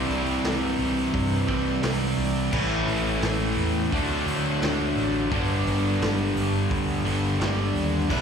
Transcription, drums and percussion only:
0.10 open hi-hat
0.44 snare, open hi-hat
0.79 open hi-hat
1.14 kick, open hi-hat
1.48 kick, open hi-hat
1.83 snare, open hi-hat
2.18 open hi-hat
2.53 kick, crash
2.88 open hi-hat
3.22 snare, open hi-hat
3.58 open hi-hat
3.92 kick, open hi-hat
4.28 open hi-hat
4.62 snare, open hi-hat
4.97 open hi-hat
5.31 kick, open hi-hat
5.67 open hi-hat
6.02 snare, open hi-hat
6.37 open hi-hat
6.71 kick, open hi-hat
7.06 open hi-hat
7.41 snare, open hi-hat
7.76 open hi-hat
8.10 kick, crash

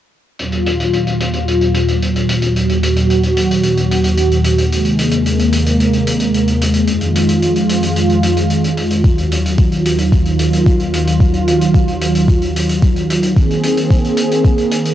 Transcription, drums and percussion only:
0.39 closed hi-hat
0.52 closed hi-hat
0.66 closed hi-hat
0.80 closed hi-hat
0.93 closed hi-hat
1.07 closed hi-hat
1.20 closed hi-hat
1.33 closed hi-hat
1.48 closed hi-hat
1.61 closed hi-hat
1.74 closed hi-hat
1.88 closed hi-hat
2.02 closed hi-hat
2.15 closed hi-hat
2.29 closed hi-hat
2.42 closed hi-hat
2.56 closed hi-hat
2.69 closed hi-hat
2.83 closed hi-hat
2.96 closed hi-hat
3.10 closed hi-hat
3.23 closed hi-hat
3.37 closed hi-hat
3.51 closed hi-hat
3.63 closed hi-hat
3.77 closed hi-hat
3.91 closed hi-hat
4.04 closed hi-hat
4.17 closed hi-hat
4.31 closed hi-hat
4.44 closed hi-hat
4.58 closed hi-hat
4.72 closed hi-hat
4.85 closed hi-hat
4.99 closed hi-hat
5.11 closed hi-hat
5.26 closed hi-hat
5.39 closed hi-hat
5.52 closed hi-hat
5.66 closed hi-hat
5.80 closed hi-hat
5.93 closed hi-hat
6.07 closed hi-hat
6.20 closed hi-hat
6.34 closed hi-hat
6.48 closed hi-hat
6.62 closed hi-hat
6.74 closed hi-hat
6.87 closed hi-hat
7.01 closed hi-hat
7.16 closed hi-hat
7.29 closed hi-hat
7.42 closed hi-hat
7.56 closed hi-hat
7.69 closed hi-hat
7.83 closed hi-hat
7.96 closed hi-hat
8.10 closed hi-hat
8.23 closed hi-hat
8.37 closed hi-hat
8.50 closed hi-hat
8.64 closed hi-hat
8.77 closed hi-hat
8.90 closed hi-hat
9.04 kick, closed hi-hat
9.18 closed hi-hat
9.31 closed hi-hat
9.46 closed hi-hat
9.58 kick, closed hi-hat
9.72 closed hi-hat
9.85 closed hi-hat
9.98 closed hi-hat
10.12 kick, closed hi-hat
10.25 closed hi-hat
10.39 closed hi-hat
10.53 closed hi-hat
10.66 kick, closed hi-hat
10.80 closed hi-hat
10.94 closed hi-hat
11.07 closed hi-hat
11.20 kick, closed hi-hat
11.34 closed hi-hat
11.48 closed hi-hat
11.61 closed hi-hat
11.74 kick, closed hi-hat
11.88 closed hi-hat
12.01 closed hi-hat
12.15 closed hi-hat
12.28 kick, closed hi-hat
12.42 closed hi-hat
12.56 closed hi-hat
12.69 closed hi-hat
12.82 kick, closed hi-hat
12.96 closed hi-hat
13.10 closed hi-hat
13.23 closed hi-hat
13.36 kick, closed hi-hat
13.51 closed hi-hat
13.63 closed hi-hat
13.77 closed hi-hat
13.91 kick, closed hi-hat
14.04 closed hi-hat
14.17 closed hi-hat
14.31 closed hi-hat
14.45 kick, closed hi-hat
14.58 closed hi-hat
14.71 closed hi-hat
14.85 closed hi-hat

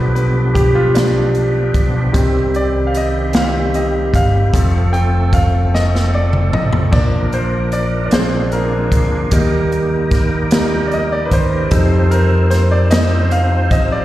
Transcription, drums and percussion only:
0.16 closed hi-hat
0.55 kick, closed hi-hat
0.95 snare, closed hi-hat
1.35 closed hi-hat
1.74 kick, closed hi-hat
2.14 kick, closed hi-hat
2.54 closed hi-hat
2.94 closed hi-hat
3.33 snare, closed hi-hat
3.74 closed hi-hat
4.14 kick, closed hi-hat
4.54 kick, closed hi-hat
4.94 closed hi-hat
5.33 kick, closed hi-hat
5.75 snare
5.95 snare
6.33 mid tom
6.53 mid tom
6.73 floor tom
6.93 kick, splash
7.32 closed hi-hat
7.72 closed hi-hat
8.11 snare, closed hi-hat
8.52 closed hi-hat
8.92 kick, closed hi-hat
9.31 kick, closed hi-hat
9.72 closed hi-hat
10.11 kick, snare, closed hi-hat
10.51 snare, closed hi-hat
10.91 closed hi-hat
11.31 kick, closed hi-hat
11.71 kick, closed hi-hat
12.11 closed hi-hat
12.51 snare, closed hi-hat
12.91 snare, closed hi-hat
13.31 closed hi-hat
13.71 kick, closed hi-hat

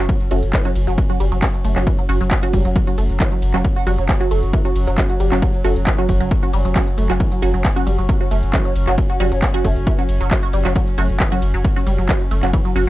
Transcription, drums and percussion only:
0.09 kick, closed hi-hat, ride
0.21 closed hi-hat
0.31 open hi-hat, ride
0.43 closed hi-hat
0.53 kick, clap, closed hi-hat, ride
0.65 closed hi-hat
0.76 open hi-hat, ride
0.87 closed hi-hat
0.98 kick, closed hi-hat, ride
1.10 closed hi-hat
1.20 open hi-hat, ride
1.32 closed hi-hat
1.42 kick, clap, closed hi-hat, ride
1.54 closed hi-hat
1.65 open hi-hat, ride
1.76 clap, closed hi-hat
1.87 kick, closed hi-hat, ride
1.98 closed hi-hat
2.09 open hi-hat, ride
2.21 closed hi-hat
2.31 kick, clap, closed hi-hat, ride
2.43 closed hi-hat
2.53 kick, open hi-hat, ride
2.65 closed hi-hat
2.76 kick, closed hi-hat, ride
2.87 closed hi-hat
2.98 open hi-hat, ride
3.10 closed hi-hat
3.20 kick, clap, closed hi-hat, ride
3.32 closed hi-hat
3.42 open hi-hat, ride
3.54 clap, closed hi-hat
3.64 kick, closed hi-hat, ride
3.76 closed hi-hat
3.87 open hi-hat, ride
3.98 closed hi-hat
4.09 kick, clap, closed hi-hat, ride
4.21 closed hi-hat
4.31 open hi-hat, ride
4.43 closed hi-hat
4.53 kick, closed hi-hat, ride
4.65 closed hi-hat
4.76 open hi-hat, ride
4.87 closed hi-hat
4.98 kick, clap, closed hi-hat, ride
5.10 closed hi-hat
5.20 open hi-hat, ride
5.32 clap, closed hi-hat
5.42 kick, closed hi-hat, ride
5.54 closed hi-hat
5.64 open hi-hat, ride
5.76 closed hi-hat
5.87 kick, clap, closed hi-hat, ride
5.98 closed hi-hat
6.09 kick, open hi-hat, ride
6.21 closed hi-hat
6.31 kick, closed hi-hat, ride
6.43 closed hi-hat
6.53 open hi-hat, ride
6.65 closed hi-hat
6.76 kick, clap, closed hi-hat, ride
6.87 closed hi-hat
6.98 open hi-hat, ride
7.10 clap, closed hi-hat
7.20 kick, closed hi-hat, ride
7.32 closed hi-hat
7.42 open hi-hat, ride
7.54 closed hi-hat
7.65 kick, clap, closed hi-hat, ride
7.76 closed hi-hat
7.87 open hi-hat, ride
7.99 closed hi-hat
8.09 kick, closed hi-hat, ride
8.21 closed hi-hat
8.31 open hi-hat, ride
8.43 closed hi-hat
8.53 kick, clap, closed hi-hat, ride
8.65 closed hi-hat
8.76 open hi-hat, ride
8.87 clap, closed hi-hat
8.98 kick, closed hi-hat, ride
9.10 closed hi-hat
9.20 open hi-hat, ride
9.32 closed hi-hat
9.42 kick, clap, closed hi-hat, ride
9.54 closed hi-hat
9.64 kick, open hi-hat, ride
9.76 closed hi-hat
9.87 kick, closed hi-hat, ride
9.98 closed hi-hat
10.09 open hi-hat, ride
10.21 closed hi-hat
10.31 kick, clap, closed hi-hat, ride
10.43 closed hi-hat
10.53 open hi-hat, ride
10.65 clap, closed hi-hat
10.76 kick, closed hi-hat, ride
10.87 closed hi-hat
10.98 open hi-hat, ride
11.09 closed hi-hat
11.20 kick, clap, closed hi-hat, ride
11.32 closed hi-hat
11.42 open hi-hat, ride
11.54 closed hi-hat
11.64 kick, closed hi-hat, ride
11.76 closed hi-hat
11.87 open hi-hat, ride
11.98 closed hi-hat
12.09 kick, clap, closed hi-hat, ride
12.21 closed hi-hat
12.31 open hi-hat, ride
12.43 clap, closed hi-hat
12.53 kick, closed hi-hat, ride
12.65 closed hi-hat
12.76 open hi-hat, ride

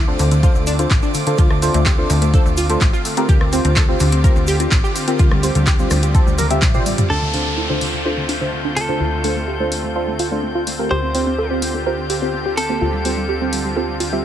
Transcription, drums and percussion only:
0.19 open hi-hat, shaker
0.31 closed hi-hat, shaker
0.43 kick, closed hi-hat, shaker
0.55 shaker
0.67 open hi-hat, shaker
0.79 closed hi-hat, shaker
0.90 kick, clap, closed hi-hat, shaker
1.03 shaker
1.14 open hi-hat, shaker
1.27 closed hi-hat, shaker
1.38 kick, closed hi-hat, shaker
1.51 cross-stick
1.62 open hi-hat, shaker
1.74 closed hi-hat, shaker
1.86 kick, clap, closed hi-hat, shaker
2.10 open hi-hat, shaker
2.22 closed hi-hat, shaker
2.34 kick, closed hi-hat, shaker
2.46 shaker
2.57 open hi-hat, shaker
2.70 closed hi-hat, shaker
2.81 kick, clap, closed hi-hat, shaker
2.94 shaker
3.05 open hi-hat, shaker
3.17 closed hi-hat, shaker
3.29 kick, closed hi-hat, shaker
3.41 cross-stick
3.53 open hi-hat, shaker
3.65 closed hi-hat, shaker
3.76 kick, clap, closed hi-hat, shaker
4.00 open hi-hat, shaker
4.12 closed hi-hat, shaker
4.24 kick, closed hi-hat, shaker
4.36 shaker
4.47 open hi-hat, shaker
4.60 closed hi-hat, shaker
4.71 kick, clap, closed hi-hat, shaker
4.84 shaker
4.96 open hi-hat, shaker
5.07 closed hi-hat, shaker
5.19 kick, closed hi-hat, shaker
5.31 cross-stick
5.43 open hi-hat, shaker
5.55 closed hi-hat, shaker
5.67 kick, clap, closed hi-hat, shaker
5.79 shaker
5.90 cross-stick, open hi-hat, shaker
6.03 closed hi-hat, shaker
6.15 kick, closed hi-hat, shaker
6.27 shaker
6.38 open hi-hat, high tom, shaker
6.51 closed hi-hat, shaker
6.62 kick, clap, closed hi-hat, mid tom, shaker
6.74 mid tom, shaker
6.86 open hi-hat, shaker
6.98 closed hi-hat, mid tom, shaker
7.34 open hi-hat
7.81 open hi-hat
8.29 open hi-hat
8.77 open hi-hat
9.24 open hi-hat
9.72 open hi-hat
10.19 open hi-hat
10.67 open hi-hat
11.15 open hi-hat
11.62 open hi-hat
12.10 open hi-hat
12.57 open hi-hat
13.05 open hi-hat
13.53 open hi-hat
14.00 open hi-hat

